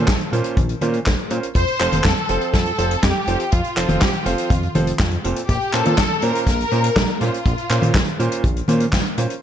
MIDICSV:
0, 0, Header, 1, 5, 480
1, 0, Start_track
1, 0, Tempo, 491803
1, 1518, Time_signature, 4, 2, 24, 8
1, 9196, End_track
2, 0, Start_track
2, 0, Title_t, "Violin section"
2, 0, Program_c, 0, 48
2, 0, Note_on_c, 0, 69, 100
2, 318, Note_off_c, 0, 69, 0
2, 1522, Note_on_c, 0, 72, 111
2, 1966, Note_off_c, 0, 72, 0
2, 2000, Note_on_c, 0, 69, 106
2, 2467, Note_off_c, 0, 69, 0
2, 2478, Note_on_c, 0, 69, 105
2, 2924, Note_off_c, 0, 69, 0
2, 2957, Note_on_c, 0, 67, 104
2, 3437, Note_off_c, 0, 67, 0
2, 3438, Note_on_c, 0, 65, 93
2, 3918, Note_off_c, 0, 65, 0
2, 3919, Note_on_c, 0, 67, 95
2, 4157, Note_on_c, 0, 65, 85
2, 4158, Note_off_c, 0, 67, 0
2, 4637, Note_off_c, 0, 65, 0
2, 5358, Note_on_c, 0, 67, 104
2, 5581, Note_off_c, 0, 67, 0
2, 5599, Note_on_c, 0, 69, 114
2, 6078, Note_off_c, 0, 69, 0
2, 6079, Note_on_c, 0, 70, 114
2, 6306, Note_off_c, 0, 70, 0
2, 6318, Note_on_c, 0, 70, 118
2, 6999, Note_off_c, 0, 70, 0
2, 7038, Note_on_c, 0, 65, 97
2, 7998, Note_off_c, 0, 65, 0
2, 9196, End_track
3, 0, Start_track
3, 0, Title_t, "Grand piano"
3, 0, Program_c, 1, 0
3, 319, Note_on_c, 1, 46, 93
3, 319, Note_on_c, 1, 61, 88
3, 319, Note_on_c, 1, 65, 84
3, 319, Note_on_c, 1, 70, 85
3, 319, Note_on_c, 1, 72, 105
3, 540, Note_off_c, 1, 46, 0
3, 540, Note_off_c, 1, 61, 0
3, 540, Note_off_c, 1, 65, 0
3, 540, Note_off_c, 1, 70, 0
3, 540, Note_off_c, 1, 72, 0
3, 798, Note_on_c, 1, 46, 89
3, 798, Note_on_c, 1, 61, 81
3, 798, Note_on_c, 1, 70, 81
3, 798, Note_on_c, 1, 72, 99
3, 799, Note_on_c, 1, 65, 82
3, 936, Note_off_c, 1, 46, 0
3, 936, Note_off_c, 1, 61, 0
3, 936, Note_off_c, 1, 70, 0
3, 936, Note_off_c, 1, 72, 0
3, 937, Note_off_c, 1, 65, 0
3, 1277, Note_on_c, 1, 61, 80
3, 1277, Note_on_c, 1, 65, 72
3, 1278, Note_on_c, 1, 70, 74
3, 1278, Note_on_c, 1, 72, 90
3, 1416, Note_off_c, 1, 61, 0
3, 1416, Note_off_c, 1, 65, 0
3, 1416, Note_off_c, 1, 70, 0
3, 1416, Note_off_c, 1, 72, 0
3, 1758, Note_on_c, 1, 53, 100
3, 1758, Note_on_c, 1, 60, 91
3, 1758, Note_on_c, 1, 65, 94
3, 1758, Note_on_c, 1, 69, 92
3, 1758, Note_on_c, 1, 72, 112
3, 1979, Note_off_c, 1, 53, 0
3, 1979, Note_off_c, 1, 60, 0
3, 1979, Note_off_c, 1, 65, 0
3, 1979, Note_off_c, 1, 69, 0
3, 1979, Note_off_c, 1, 72, 0
3, 2237, Note_on_c, 1, 53, 91
3, 2237, Note_on_c, 1, 60, 83
3, 2237, Note_on_c, 1, 65, 82
3, 2237, Note_on_c, 1, 69, 84
3, 2237, Note_on_c, 1, 72, 98
3, 2459, Note_off_c, 1, 53, 0
3, 2459, Note_off_c, 1, 60, 0
3, 2459, Note_off_c, 1, 65, 0
3, 2459, Note_off_c, 1, 69, 0
3, 2459, Note_off_c, 1, 72, 0
3, 2718, Note_on_c, 1, 53, 89
3, 2718, Note_on_c, 1, 60, 77
3, 2718, Note_on_c, 1, 65, 82
3, 2718, Note_on_c, 1, 69, 86
3, 2718, Note_on_c, 1, 72, 100
3, 2856, Note_off_c, 1, 60, 0
3, 2856, Note_off_c, 1, 69, 0
3, 2856, Note_off_c, 1, 72, 0
3, 2857, Note_off_c, 1, 53, 0
3, 2857, Note_off_c, 1, 65, 0
3, 3198, Note_on_c, 1, 53, 82
3, 3198, Note_on_c, 1, 60, 70
3, 3198, Note_on_c, 1, 65, 73
3, 3198, Note_on_c, 1, 69, 73
3, 3198, Note_on_c, 1, 72, 92
3, 3336, Note_off_c, 1, 60, 0
3, 3336, Note_off_c, 1, 65, 0
3, 3336, Note_off_c, 1, 69, 0
3, 3336, Note_off_c, 1, 72, 0
3, 3337, Note_off_c, 1, 53, 0
3, 3678, Note_on_c, 1, 53, 100
3, 3678, Note_on_c, 1, 60, 90
3, 3678, Note_on_c, 1, 65, 96
3, 3678, Note_on_c, 1, 69, 95
3, 3678, Note_on_c, 1, 72, 108
3, 3899, Note_off_c, 1, 60, 0
3, 3899, Note_off_c, 1, 65, 0
3, 3899, Note_off_c, 1, 69, 0
3, 3900, Note_off_c, 1, 53, 0
3, 3900, Note_off_c, 1, 72, 0
3, 4158, Note_on_c, 1, 53, 90
3, 4158, Note_on_c, 1, 60, 89
3, 4158, Note_on_c, 1, 65, 87
3, 4158, Note_on_c, 1, 69, 82
3, 4158, Note_on_c, 1, 72, 102
3, 4379, Note_off_c, 1, 53, 0
3, 4379, Note_off_c, 1, 60, 0
3, 4379, Note_off_c, 1, 69, 0
3, 4380, Note_off_c, 1, 65, 0
3, 4380, Note_off_c, 1, 72, 0
3, 4639, Note_on_c, 1, 53, 91
3, 4639, Note_on_c, 1, 60, 78
3, 4639, Note_on_c, 1, 65, 80
3, 4639, Note_on_c, 1, 69, 86
3, 4639, Note_on_c, 1, 72, 101
3, 4777, Note_off_c, 1, 53, 0
3, 4777, Note_off_c, 1, 60, 0
3, 4777, Note_off_c, 1, 65, 0
3, 4777, Note_off_c, 1, 69, 0
3, 4777, Note_off_c, 1, 72, 0
3, 5118, Note_on_c, 1, 60, 74
3, 5118, Note_on_c, 1, 65, 73
3, 5118, Note_on_c, 1, 72, 94
3, 5119, Note_on_c, 1, 46, 83
3, 5119, Note_on_c, 1, 69, 73
3, 5256, Note_off_c, 1, 60, 0
3, 5256, Note_off_c, 1, 65, 0
3, 5257, Note_off_c, 1, 46, 0
3, 5257, Note_off_c, 1, 69, 0
3, 5257, Note_off_c, 1, 72, 0
3, 5598, Note_on_c, 1, 46, 100
3, 5598, Note_on_c, 1, 61, 93
3, 5598, Note_on_c, 1, 65, 92
3, 5598, Note_on_c, 1, 70, 93
3, 5598, Note_on_c, 1, 72, 109
3, 5819, Note_off_c, 1, 46, 0
3, 5819, Note_off_c, 1, 61, 0
3, 5819, Note_off_c, 1, 65, 0
3, 5819, Note_off_c, 1, 72, 0
3, 5820, Note_off_c, 1, 70, 0
3, 6078, Note_on_c, 1, 46, 96
3, 6078, Note_on_c, 1, 61, 91
3, 6079, Note_on_c, 1, 65, 86
3, 6079, Note_on_c, 1, 70, 91
3, 6079, Note_on_c, 1, 72, 108
3, 6299, Note_off_c, 1, 46, 0
3, 6300, Note_off_c, 1, 61, 0
3, 6300, Note_off_c, 1, 65, 0
3, 6300, Note_off_c, 1, 70, 0
3, 6300, Note_off_c, 1, 72, 0
3, 6558, Note_on_c, 1, 61, 78
3, 6558, Note_on_c, 1, 65, 88
3, 6558, Note_on_c, 1, 70, 84
3, 6559, Note_on_c, 1, 46, 93
3, 6559, Note_on_c, 1, 72, 95
3, 6696, Note_off_c, 1, 61, 0
3, 6696, Note_off_c, 1, 65, 0
3, 6696, Note_off_c, 1, 70, 0
3, 6697, Note_off_c, 1, 46, 0
3, 6697, Note_off_c, 1, 72, 0
3, 7039, Note_on_c, 1, 46, 83
3, 7039, Note_on_c, 1, 61, 77
3, 7039, Note_on_c, 1, 65, 72
3, 7039, Note_on_c, 1, 70, 74
3, 7039, Note_on_c, 1, 72, 88
3, 7177, Note_off_c, 1, 46, 0
3, 7177, Note_off_c, 1, 61, 0
3, 7177, Note_off_c, 1, 65, 0
3, 7177, Note_off_c, 1, 70, 0
3, 7177, Note_off_c, 1, 72, 0
3, 7518, Note_on_c, 1, 65, 87
3, 7518, Note_on_c, 1, 70, 97
3, 7519, Note_on_c, 1, 46, 99
3, 7519, Note_on_c, 1, 61, 96
3, 7519, Note_on_c, 1, 72, 111
3, 7740, Note_off_c, 1, 46, 0
3, 7740, Note_off_c, 1, 61, 0
3, 7740, Note_off_c, 1, 65, 0
3, 7740, Note_off_c, 1, 70, 0
3, 7740, Note_off_c, 1, 72, 0
3, 7999, Note_on_c, 1, 46, 91
3, 7999, Note_on_c, 1, 61, 83
3, 7999, Note_on_c, 1, 65, 82
3, 7999, Note_on_c, 1, 70, 90
3, 7999, Note_on_c, 1, 72, 103
3, 8220, Note_off_c, 1, 46, 0
3, 8220, Note_off_c, 1, 61, 0
3, 8220, Note_off_c, 1, 65, 0
3, 8220, Note_off_c, 1, 70, 0
3, 8220, Note_off_c, 1, 72, 0
3, 8478, Note_on_c, 1, 70, 81
3, 8479, Note_on_c, 1, 46, 88
3, 8479, Note_on_c, 1, 61, 81
3, 8479, Note_on_c, 1, 65, 78
3, 8479, Note_on_c, 1, 72, 98
3, 8616, Note_off_c, 1, 70, 0
3, 8617, Note_off_c, 1, 46, 0
3, 8617, Note_off_c, 1, 61, 0
3, 8617, Note_off_c, 1, 65, 0
3, 8617, Note_off_c, 1, 72, 0
3, 8958, Note_on_c, 1, 61, 78
3, 8958, Note_on_c, 1, 72, 90
3, 8959, Note_on_c, 1, 65, 70
3, 8959, Note_on_c, 1, 70, 74
3, 9096, Note_off_c, 1, 72, 0
3, 9097, Note_off_c, 1, 61, 0
3, 9097, Note_off_c, 1, 65, 0
3, 9097, Note_off_c, 1, 70, 0
3, 9196, End_track
4, 0, Start_track
4, 0, Title_t, "Analog synth bass"
4, 0, Program_c, 2, 38
4, 77, Note_on_c, 2, 34, 80
4, 164, Note_off_c, 2, 34, 0
4, 317, Note_on_c, 2, 46, 81
4, 404, Note_off_c, 2, 46, 0
4, 557, Note_on_c, 2, 34, 85
4, 731, Note_off_c, 2, 34, 0
4, 797, Note_on_c, 2, 46, 105
4, 971, Note_off_c, 2, 46, 0
4, 1044, Note_on_c, 2, 34, 91
4, 1127, Note_off_c, 2, 34, 0
4, 1278, Note_on_c, 2, 46, 107
4, 1365, Note_off_c, 2, 46, 0
4, 1514, Note_on_c, 2, 41, 99
4, 1602, Note_off_c, 2, 41, 0
4, 1757, Note_on_c, 2, 29, 99
4, 1844, Note_off_c, 2, 29, 0
4, 1877, Note_on_c, 2, 29, 81
4, 1964, Note_off_c, 2, 29, 0
4, 2000, Note_on_c, 2, 41, 83
4, 2086, Note_off_c, 2, 41, 0
4, 2237, Note_on_c, 2, 29, 85
4, 2324, Note_off_c, 2, 29, 0
4, 2476, Note_on_c, 2, 41, 100
4, 2651, Note_off_c, 2, 41, 0
4, 2717, Note_on_c, 2, 29, 82
4, 2891, Note_off_c, 2, 29, 0
4, 2959, Note_on_c, 2, 41, 106
4, 3045, Note_off_c, 2, 41, 0
4, 3196, Note_on_c, 2, 29, 106
4, 3284, Note_off_c, 2, 29, 0
4, 3443, Note_on_c, 2, 41, 96
4, 3527, Note_off_c, 2, 41, 0
4, 3677, Note_on_c, 2, 29, 103
4, 3764, Note_off_c, 2, 29, 0
4, 3797, Note_on_c, 2, 29, 83
4, 3884, Note_off_c, 2, 29, 0
4, 3924, Note_on_c, 2, 41, 79
4, 4008, Note_off_c, 2, 41, 0
4, 4158, Note_on_c, 2, 29, 85
4, 4245, Note_off_c, 2, 29, 0
4, 4395, Note_on_c, 2, 41, 81
4, 4570, Note_off_c, 2, 41, 0
4, 4637, Note_on_c, 2, 29, 80
4, 4811, Note_off_c, 2, 29, 0
4, 4876, Note_on_c, 2, 41, 92
4, 5051, Note_off_c, 2, 41, 0
4, 5117, Note_on_c, 2, 29, 86
4, 5205, Note_off_c, 2, 29, 0
4, 5358, Note_on_c, 2, 34, 100
4, 5445, Note_off_c, 2, 34, 0
4, 5598, Note_on_c, 2, 46, 97
4, 5685, Note_off_c, 2, 46, 0
4, 5718, Note_on_c, 2, 46, 89
4, 5804, Note_off_c, 2, 46, 0
4, 5836, Note_on_c, 2, 34, 83
4, 5923, Note_off_c, 2, 34, 0
4, 6078, Note_on_c, 2, 46, 85
4, 6165, Note_off_c, 2, 46, 0
4, 6312, Note_on_c, 2, 34, 102
4, 6488, Note_off_c, 2, 34, 0
4, 6558, Note_on_c, 2, 46, 89
4, 6732, Note_off_c, 2, 46, 0
4, 6795, Note_on_c, 2, 34, 107
4, 6883, Note_off_c, 2, 34, 0
4, 7039, Note_on_c, 2, 46, 104
4, 7125, Note_off_c, 2, 46, 0
4, 7277, Note_on_c, 2, 34, 100
4, 7364, Note_off_c, 2, 34, 0
4, 7518, Note_on_c, 2, 46, 105
4, 7605, Note_off_c, 2, 46, 0
4, 7639, Note_on_c, 2, 46, 86
4, 7725, Note_off_c, 2, 46, 0
4, 7754, Note_on_c, 2, 34, 81
4, 7843, Note_off_c, 2, 34, 0
4, 7999, Note_on_c, 2, 46, 83
4, 8085, Note_off_c, 2, 46, 0
4, 8237, Note_on_c, 2, 34, 88
4, 8411, Note_off_c, 2, 34, 0
4, 8478, Note_on_c, 2, 46, 84
4, 8652, Note_off_c, 2, 46, 0
4, 8715, Note_on_c, 2, 34, 105
4, 8803, Note_off_c, 2, 34, 0
4, 8958, Note_on_c, 2, 46, 100
4, 9045, Note_off_c, 2, 46, 0
4, 9196, End_track
5, 0, Start_track
5, 0, Title_t, "Drums"
5, 73, Note_on_c, 9, 42, 83
5, 76, Note_on_c, 9, 39, 97
5, 77, Note_on_c, 9, 36, 112
5, 82, Note_on_c, 9, 38, 127
5, 171, Note_off_c, 9, 42, 0
5, 174, Note_off_c, 9, 39, 0
5, 175, Note_off_c, 9, 36, 0
5, 179, Note_off_c, 9, 38, 0
5, 205, Note_on_c, 9, 42, 52
5, 303, Note_off_c, 9, 42, 0
5, 324, Note_on_c, 9, 42, 88
5, 421, Note_off_c, 9, 42, 0
5, 431, Note_on_c, 9, 42, 56
5, 529, Note_off_c, 9, 42, 0
5, 557, Note_on_c, 9, 36, 125
5, 563, Note_on_c, 9, 42, 80
5, 566, Note_on_c, 9, 48, 54
5, 654, Note_off_c, 9, 36, 0
5, 661, Note_off_c, 9, 42, 0
5, 663, Note_off_c, 9, 48, 0
5, 676, Note_on_c, 9, 42, 53
5, 773, Note_off_c, 9, 42, 0
5, 793, Note_on_c, 9, 48, 65
5, 796, Note_on_c, 9, 42, 82
5, 891, Note_off_c, 9, 48, 0
5, 893, Note_off_c, 9, 42, 0
5, 914, Note_on_c, 9, 42, 60
5, 1011, Note_off_c, 9, 42, 0
5, 1036, Note_on_c, 9, 39, 91
5, 1039, Note_on_c, 9, 42, 73
5, 1042, Note_on_c, 9, 38, 108
5, 1044, Note_on_c, 9, 36, 97
5, 1133, Note_off_c, 9, 39, 0
5, 1137, Note_off_c, 9, 42, 0
5, 1139, Note_off_c, 9, 38, 0
5, 1141, Note_off_c, 9, 36, 0
5, 1159, Note_on_c, 9, 42, 47
5, 1256, Note_off_c, 9, 42, 0
5, 1274, Note_on_c, 9, 42, 95
5, 1372, Note_off_c, 9, 42, 0
5, 1399, Note_on_c, 9, 42, 66
5, 1496, Note_off_c, 9, 42, 0
5, 1514, Note_on_c, 9, 36, 113
5, 1520, Note_on_c, 9, 42, 87
5, 1612, Note_off_c, 9, 36, 0
5, 1618, Note_off_c, 9, 42, 0
5, 1642, Note_on_c, 9, 42, 49
5, 1739, Note_off_c, 9, 42, 0
5, 1761, Note_on_c, 9, 42, 88
5, 1762, Note_on_c, 9, 39, 72
5, 1858, Note_off_c, 9, 42, 0
5, 1859, Note_off_c, 9, 39, 0
5, 1879, Note_on_c, 9, 42, 64
5, 1883, Note_on_c, 9, 48, 72
5, 1977, Note_off_c, 9, 42, 0
5, 1981, Note_off_c, 9, 48, 0
5, 1991, Note_on_c, 9, 39, 89
5, 1996, Note_on_c, 9, 42, 88
5, 2000, Note_on_c, 9, 36, 101
5, 2007, Note_on_c, 9, 38, 118
5, 2088, Note_off_c, 9, 39, 0
5, 2093, Note_off_c, 9, 42, 0
5, 2097, Note_off_c, 9, 36, 0
5, 2105, Note_off_c, 9, 38, 0
5, 2236, Note_on_c, 9, 42, 92
5, 2334, Note_off_c, 9, 42, 0
5, 2356, Note_on_c, 9, 42, 61
5, 2453, Note_off_c, 9, 42, 0
5, 2473, Note_on_c, 9, 38, 57
5, 2476, Note_on_c, 9, 36, 109
5, 2479, Note_on_c, 9, 42, 85
5, 2570, Note_off_c, 9, 38, 0
5, 2573, Note_off_c, 9, 36, 0
5, 2577, Note_off_c, 9, 42, 0
5, 2593, Note_on_c, 9, 42, 48
5, 2691, Note_off_c, 9, 42, 0
5, 2720, Note_on_c, 9, 42, 90
5, 2818, Note_off_c, 9, 42, 0
5, 2840, Note_on_c, 9, 42, 60
5, 2938, Note_off_c, 9, 42, 0
5, 2957, Note_on_c, 9, 38, 119
5, 2959, Note_on_c, 9, 36, 94
5, 2959, Note_on_c, 9, 42, 89
5, 2964, Note_on_c, 9, 39, 82
5, 3055, Note_off_c, 9, 38, 0
5, 3056, Note_off_c, 9, 36, 0
5, 3056, Note_off_c, 9, 42, 0
5, 3062, Note_off_c, 9, 39, 0
5, 3196, Note_on_c, 9, 42, 91
5, 3294, Note_off_c, 9, 42, 0
5, 3317, Note_on_c, 9, 42, 65
5, 3415, Note_off_c, 9, 42, 0
5, 3436, Note_on_c, 9, 42, 83
5, 3443, Note_on_c, 9, 36, 105
5, 3533, Note_off_c, 9, 42, 0
5, 3541, Note_off_c, 9, 36, 0
5, 3557, Note_on_c, 9, 42, 51
5, 3654, Note_off_c, 9, 42, 0
5, 3679, Note_on_c, 9, 39, 76
5, 3682, Note_on_c, 9, 42, 84
5, 3777, Note_off_c, 9, 39, 0
5, 3780, Note_off_c, 9, 42, 0
5, 3794, Note_on_c, 9, 48, 82
5, 3799, Note_on_c, 9, 42, 66
5, 3891, Note_off_c, 9, 48, 0
5, 3897, Note_off_c, 9, 42, 0
5, 3911, Note_on_c, 9, 42, 90
5, 3917, Note_on_c, 9, 38, 123
5, 3919, Note_on_c, 9, 39, 87
5, 3924, Note_on_c, 9, 36, 105
5, 4009, Note_off_c, 9, 42, 0
5, 4015, Note_off_c, 9, 38, 0
5, 4017, Note_off_c, 9, 39, 0
5, 4022, Note_off_c, 9, 36, 0
5, 4034, Note_on_c, 9, 42, 47
5, 4131, Note_off_c, 9, 42, 0
5, 4158, Note_on_c, 9, 42, 93
5, 4256, Note_off_c, 9, 42, 0
5, 4277, Note_on_c, 9, 42, 66
5, 4374, Note_off_c, 9, 42, 0
5, 4395, Note_on_c, 9, 36, 124
5, 4398, Note_on_c, 9, 48, 71
5, 4401, Note_on_c, 9, 42, 84
5, 4492, Note_off_c, 9, 36, 0
5, 4496, Note_off_c, 9, 48, 0
5, 4498, Note_off_c, 9, 42, 0
5, 4520, Note_on_c, 9, 42, 48
5, 4617, Note_off_c, 9, 42, 0
5, 4636, Note_on_c, 9, 42, 82
5, 4636, Note_on_c, 9, 48, 81
5, 4733, Note_off_c, 9, 42, 0
5, 4733, Note_off_c, 9, 48, 0
5, 4755, Note_on_c, 9, 42, 68
5, 4853, Note_off_c, 9, 42, 0
5, 4873, Note_on_c, 9, 39, 83
5, 4875, Note_on_c, 9, 38, 110
5, 4876, Note_on_c, 9, 36, 105
5, 4877, Note_on_c, 9, 42, 90
5, 4971, Note_off_c, 9, 39, 0
5, 4972, Note_off_c, 9, 38, 0
5, 4974, Note_off_c, 9, 36, 0
5, 4975, Note_off_c, 9, 42, 0
5, 4993, Note_on_c, 9, 42, 50
5, 5090, Note_off_c, 9, 42, 0
5, 5120, Note_on_c, 9, 42, 103
5, 5217, Note_off_c, 9, 42, 0
5, 5235, Note_on_c, 9, 42, 69
5, 5333, Note_off_c, 9, 42, 0
5, 5357, Note_on_c, 9, 42, 85
5, 5358, Note_on_c, 9, 36, 109
5, 5455, Note_off_c, 9, 36, 0
5, 5455, Note_off_c, 9, 42, 0
5, 5475, Note_on_c, 9, 42, 54
5, 5573, Note_off_c, 9, 42, 0
5, 5596, Note_on_c, 9, 39, 78
5, 5596, Note_on_c, 9, 42, 85
5, 5694, Note_off_c, 9, 39, 0
5, 5694, Note_off_c, 9, 42, 0
5, 5714, Note_on_c, 9, 42, 70
5, 5725, Note_on_c, 9, 48, 82
5, 5812, Note_off_c, 9, 42, 0
5, 5822, Note_off_c, 9, 48, 0
5, 5834, Note_on_c, 9, 38, 117
5, 5836, Note_on_c, 9, 36, 108
5, 5837, Note_on_c, 9, 39, 88
5, 5842, Note_on_c, 9, 42, 89
5, 5932, Note_off_c, 9, 38, 0
5, 5934, Note_off_c, 9, 36, 0
5, 5935, Note_off_c, 9, 39, 0
5, 5940, Note_off_c, 9, 42, 0
5, 6071, Note_on_c, 9, 42, 88
5, 6169, Note_off_c, 9, 42, 0
5, 6200, Note_on_c, 9, 42, 66
5, 6298, Note_off_c, 9, 42, 0
5, 6312, Note_on_c, 9, 36, 114
5, 6316, Note_on_c, 9, 42, 95
5, 6318, Note_on_c, 9, 38, 57
5, 6410, Note_off_c, 9, 36, 0
5, 6413, Note_off_c, 9, 42, 0
5, 6416, Note_off_c, 9, 38, 0
5, 6449, Note_on_c, 9, 42, 52
5, 6546, Note_off_c, 9, 42, 0
5, 6553, Note_on_c, 9, 42, 85
5, 6651, Note_off_c, 9, 42, 0
5, 6675, Note_on_c, 9, 42, 66
5, 6773, Note_off_c, 9, 42, 0
5, 6795, Note_on_c, 9, 36, 113
5, 6796, Note_on_c, 9, 38, 120
5, 6796, Note_on_c, 9, 42, 84
5, 6800, Note_on_c, 9, 39, 90
5, 6893, Note_off_c, 9, 36, 0
5, 6893, Note_off_c, 9, 42, 0
5, 6894, Note_off_c, 9, 38, 0
5, 6897, Note_off_c, 9, 39, 0
5, 7036, Note_on_c, 9, 42, 93
5, 7134, Note_off_c, 9, 42, 0
5, 7166, Note_on_c, 9, 42, 73
5, 7264, Note_off_c, 9, 42, 0
5, 7277, Note_on_c, 9, 36, 118
5, 7279, Note_on_c, 9, 42, 93
5, 7375, Note_off_c, 9, 36, 0
5, 7377, Note_off_c, 9, 42, 0
5, 7399, Note_on_c, 9, 42, 47
5, 7496, Note_off_c, 9, 42, 0
5, 7518, Note_on_c, 9, 42, 97
5, 7521, Note_on_c, 9, 39, 75
5, 7615, Note_off_c, 9, 42, 0
5, 7618, Note_off_c, 9, 39, 0
5, 7632, Note_on_c, 9, 48, 88
5, 7642, Note_on_c, 9, 42, 70
5, 7730, Note_off_c, 9, 48, 0
5, 7739, Note_off_c, 9, 42, 0
5, 7754, Note_on_c, 9, 36, 99
5, 7757, Note_on_c, 9, 39, 96
5, 7760, Note_on_c, 9, 42, 94
5, 7764, Note_on_c, 9, 38, 125
5, 7852, Note_off_c, 9, 36, 0
5, 7855, Note_off_c, 9, 39, 0
5, 7858, Note_off_c, 9, 42, 0
5, 7861, Note_off_c, 9, 38, 0
5, 7883, Note_on_c, 9, 42, 58
5, 7980, Note_off_c, 9, 42, 0
5, 8003, Note_on_c, 9, 42, 90
5, 8100, Note_off_c, 9, 42, 0
5, 8118, Note_on_c, 9, 42, 69
5, 8216, Note_off_c, 9, 42, 0
5, 8237, Note_on_c, 9, 36, 112
5, 8239, Note_on_c, 9, 48, 58
5, 8241, Note_on_c, 9, 42, 89
5, 8334, Note_off_c, 9, 36, 0
5, 8337, Note_off_c, 9, 48, 0
5, 8339, Note_off_c, 9, 42, 0
5, 8361, Note_on_c, 9, 42, 53
5, 8459, Note_off_c, 9, 42, 0
5, 8470, Note_on_c, 9, 48, 83
5, 8479, Note_on_c, 9, 42, 97
5, 8568, Note_off_c, 9, 48, 0
5, 8577, Note_off_c, 9, 42, 0
5, 8592, Note_on_c, 9, 42, 66
5, 8689, Note_off_c, 9, 42, 0
5, 8713, Note_on_c, 9, 39, 87
5, 8715, Note_on_c, 9, 36, 98
5, 8715, Note_on_c, 9, 38, 108
5, 8723, Note_on_c, 9, 42, 94
5, 8811, Note_off_c, 9, 39, 0
5, 8812, Note_off_c, 9, 36, 0
5, 8813, Note_off_c, 9, 38, 0
5, 8821, Note_off_c, 9, 42, 0
5, 8836, Note_on_c, 9, 42, 52
5, 8933, Note_off_c, 9, 42, 0
5, 8958, Note_on_c, 9, 42, 95
5, 9055, Note_off_c, 9, 42, 0
5, 9079, Note_on_c, 9, 42, 65
5, 9176, Note_off_c, 9, 42, 0
5, 9196, End_track
0, 0, End_of_file